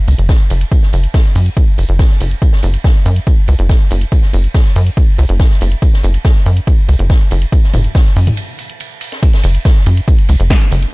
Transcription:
0.08 C#2, open hi-hat, ride
0.18 F#1, closed hi-hat
0.29 kick, snare, closed hi-hat, ride
0.50 F#1, open hi-hat, ride
0.61 closed hi-hat, ride
0.72 kick, closed hi-hat, ride
0.82 snare
0.93 F#1, open hi-hat, ride
1.04 closed hi-hat
1.14 kick, snare, closed hi-hat, ride
1.25 snare
1.35 F#2, open hi-hat
1.46 closed hi-hat
1.57 kick, closed hi-hat, ride
1.78 F#1, open hi-hat, ride
1.89 F#1, closed hi-hat
1.99 kick, snare, closed hi-hat, ride
2.10 snare
2.20 F#1, open hi-hat, ride
2.31 closed hi-hat
2.42 kick, closed hi-hat, ride
2.53 snare
2.63 F#1, open hi-hat, ride
2.74 closed hi-hat, ride
2.84 kick, snare, closed hi-hat, ride
2.95 snare
3.06 F#2, open hi-hat, ride
3.16 closed hi-hat
3.27 kick, closed hi-hat, ride
3.48 C#2, open hi-hat, ride
3.59 F#1, closed hi-hat
3.69 kick, snare, closed hi-hat, ride
3.91 F#1, open hi-hat, ride
4.01 closed hi-hat, ride
4.12 kick, closed hi-hat, ride
4.22 snare
4.33 F#1, open hi-hat, ride
4.44 closed hi-hat
4.54 kick, snare, closed hi-hat, ride
4.66 snare
4.75 F#2, open hi-hat
4.87 closed hi-hat
4.97 kick, closed hi-hat, ride
5.18 C#2, open hi-hat, ride
5.29 F#1, closed hi-hat
5.40 kick, snare, closed hi-hat, ride
5.51 snare
5.61 F#1, open hi-hat, ride
5.72 closed hi-hat
5.82 kick, closed hi-hat, ride
5.93 snare
6.03 F#1, open hi-hat, ride
6.14 closed hi-hat, ride
6.25 kick, snare, closed hi-hat, ride
6.35 snare
6.46 F#2, open hi-hat, ride
6.57 closed hi-hat
6.67 kick, closed hi-hat, ride
6.88 C#2, open hi-hat, ride
6.99 F#1, closed hi-hat
7.10 kick, snare, closed hi-hat, ride
7.31 F#1, open hi-hat, ride
7.41 closed hi-hat, ride
7.52 kick, closed hi-hat, ride
7.64 snare
7.73 F#1, open hi-hat, mid tom, ride
7.84 closed hi-hat
7.95 kick, snare, closed hi-hat, ride
8.06 snare
8.16 F#2, open hi-hat
8.27 closed hi-hat, mid tom
8.37 closed hi-hat, ride
8.58 open hi-hat, ride
8.70 closed hi-hat
8.80 closed hi-hat, ride
9.01 open hi-hat, ride
9.12 snare, closed hi-hat
9.23 kick, closed hi-hat, ride, crash
9.33 snare, closed hi-hat
9.43 F#1, open hi-hat, ride
9.54 closed hi-hat, ride
9.65 kick, snare, closed hi-hat, ride
9.76 snare, closed hi-hat
9.86 F#2, open hi-hat, ride
9.97 closed hi-hat
10.08 kick, closed hi-hat, ride
10.19 closed hi-hat
10.29 C#2, open hi-hat, ride
10.40 F#1, closed hi-hat
10.50 kick, snare, closed hi-hat, ride
10.61 closed hi-hat
10.72 F#1, open hi-hat, ride
10.82 closed hi-hat, ride

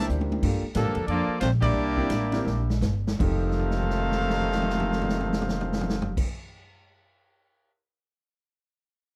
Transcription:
Already playing: A#2 E3 G3 A#3 D4 G4
0.00 E4 G4 C5
0.09 D2, hi-hat pedal, high tom
0.21 high tom
0.32 high tom
0.43 G2 A#3 D4 F4 G4 A4, kick, crash
0.62 muted upright bass stroke
0.74 A2 D3 F3 A#3 D4 F4 G4 A4 A#4, kick, snare, hi-hat pedal, ride
0.86 G2
0.95 F2, ride
1.07 F2 F3 A#3 D4 F4 A4 D5, kick, ride
1.28 muted upright bass stroke
1.40 A#1 A3 C4 D4 F4 C5, kick, snare, hi-hat pedal, ride
1.61 G3 A#3 D4 E4 G4 D5, kick, crash
1.74 C2
1.97 C4 D4 E4 G4 A#4, kick
2.10 A1, kick, snare, hi-hat pedal, ride
2.32 C4 D4 E4 G4 A#4, snare, ride
2.45 A#1, snare
2.70 snare
2.81 G1, snare, hi-hat pedal
3.07 snare
3.19 F1 F2 C3 D#3 F3 A3 D#4 G4 A4 C5 F5, kick, crash
3.44 floor tom
3.51 snare
3.59 floor tom
3.71 snare
3.82 floor tom
3.90 snare
3.99 floor tom
4.11 snare
4.22 floor tom
4.30 snare
4.40 floor tom
4.52 snare
4.62 floor tom
4.70 snare
4.79 floor tom
4.92 snare
5.01 floor tom
5.09 snare
5.20 floor tom
5.33 snare
5.42 floor tom
5.49 snare
5.61 floor tom
5.73 snare
5.81 floor tom
5.89 snare
6.02 floor tom
6.17 kick, crash

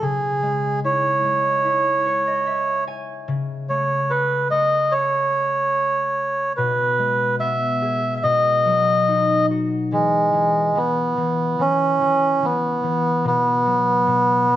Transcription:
Already playing: D#4 F#4
0.01 C#3 G#4
0.42 G#3
0.84 E4 C#5
1.24 G#3
1.65 E4
2.06 C#5
2.27 D#5
2.47 E5
2.87 G#5
3.28 C#3
3.69 A3 C#5
4.10 A4 B4
4.51 A3 D#5
4.92 A4 C#5
6.57 B2 B4
6.99 G#3
7.40 B3 E5
7.82 G#4
8.16 E5
8.23 B2 D#5
8.66 F#3
9.08 D#4
9.50 F#4
9.92 E3 G#3
10.33 E3
10.75 E3 B3
11.17 E3
11.59 E3 C#4
12.01 E3
12.42 E3 B3
12.83 E3
13.24 B2 B3
13.65 F#3
14.07 B2
14.48 F#3

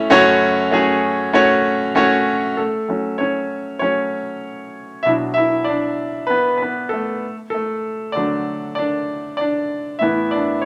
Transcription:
Already playing: A3 C#4 E4 C#5
0.10 F#2 C#3 A3 C#4 F#4 C#5
0.71 A3 C#4 F#4 G#4
1.33 A3 C#4 F#4 C#5
1.95 A3 C#4 F#4 C#5
2.57 A3 A4
2.88 F#3 A3 C#4
3.18 C#4 C#5
3.79 F#3 A3 C#4 C#5
5.03 B2 F#3 D4 E4 E5
5.34 E4 E5
5.64 D5
5.69 D4
6.27 B3 B4
6.58 B4
6.62 B3
6.89 A4
6.94 A3
7.50 A4
7.54 A3
8.12 D3 F#3 D5
8.17 A3 D4
8.75 D4 D5
9.37 D5
9.41 D4
9.99 A2 E3 B3 E4 E5
10.31 D4 D5
10.61 C#5

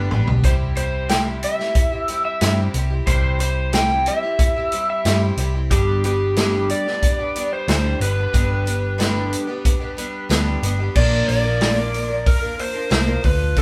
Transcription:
Already playing: G2 D3 G3 B3 D4 G4
0.11 A1 G3 B3 D4 G4, mid tom
0.27 B1 G3 B3 D4 G4, floor tom
0.43 C2 C3 G3 C4 E4 G4 C5, kick, closed hi-hat
0.75 G3 C4 E4 G4 C5, closed hi-hat
1.09 C3 G3 C4 E4 G4 G5, snare, closed hi-hat
1.43 E5, closed hi-hat
1.59 C4 E4 G4, snare
1.75 kick, closed hi-hat
1.92 C4 E4 G4
2.08 G3 C4 E4, closed hi-hat
2.12 G4
2.25 E5
2.41 G2 C3 G3 C4 E4 G4, snare, closed hi-hat
2.74 C2 G3 C4 E4 G4, closed hi-hat
2.90 C4 E4 G4
3.06 C2 C3 G3 C4 E4 G4 C5, kick, closed hi-hat
3.39 G3 C4 E4 G4 C5, closed hi-hat
3.72 C3 G3 C4 E4 G4 G5, snare, closed hi-hat
4.06 E5, closed hi-hat
4.23 C4 E4 G4
4.39 kick, closed hi-hat
4.56 C4 E4 G4
4.72 G3 C4 E4, closed hi-hat
4.76 G4
4.90 E5
5.05 G2 C3 G3 C4 E4 G4, snare, closed hi-hat
5.37 C2 G3 C4 E4 G4, closed hi-hat
5.54 C4 E4 G4
5.70 G1 G2 D3 G3 B3 D4 G4, kick, closed hi-hat
6.04 G3 B3 D4 G4, closed hi-hat
6.36 G2 D3 G3 B3 D4 G4, snare, closed hi-hat
6.69 D5, closed hi-hat
6.86 G3 B3 D4 G4, snare
7.03 kick, closed hi-hat
7.19 G3 B3 D4 G4
7.35 G3 B3 D4 G4, closed hi-hat
7.53 C5
7.68 D2 G2 D3 G3 D4 G4 C5, snare, closed hi-hat
8.00 G1 G3 B3 D4 G4 B4, closed hi-hat
8.18 G3 B3 D4 G4
8.33 G1 G2 D3 G3 B3 D4 G4, kick, closed hi-hat
8.65 G3 B3 D4 G4, closed hi-hat
8.98 G2 D3 G3 B3 D4 G4, snare, closed hi-hat
9.33 closed hi-hat
9.47 G3 B3 D4 G4
9.65 kick, closed hi-hat
9.80 G3 B3 D4 G4
9.97 G3 B3 D4 G4, closed hi-hat
10.29 D2 G2 D3 G3 B3 D4 G4, snare, closed hi-hat
10.63 G1 G3 B3 D4 G4, closed hi-hat
10.79 G3 B3 D4 G4
10.95 A#1 A#2 D3 F3 A#3 D4 A#4 D5, kick, crash
11.28 A#1 D5, open hi-hat
11.45 F3 A#3 D4 A#4
11.61 A#2 D3 F3 A#3 D4 A#4, snare, open hi-hat
11.78 F3 A#3 D4 A#4
11.93 F3 A#3 D4 A#4, open hi-hat
12.09 A#3 D4 A#4
12.13 F3
12.26 A#4, kick, open hi-hat
12.41 F3 A#3 D4 A#4
12.57 F3 A#3 D4 A#4 C5, open hi-hat
12.73 F3 A#3 D4 A#4
12.89 C2 A#2 D3 F3 A#3 D4 A#4 C5, snare, open hi-hat
13.06 F3 A#3 D4 A#4
13.21 D2 F3 D4 F4 A4, kick, open hi-hat
13.25 B4
13.56 D3 F3 D4 F4 A4, kick, open hi-hat

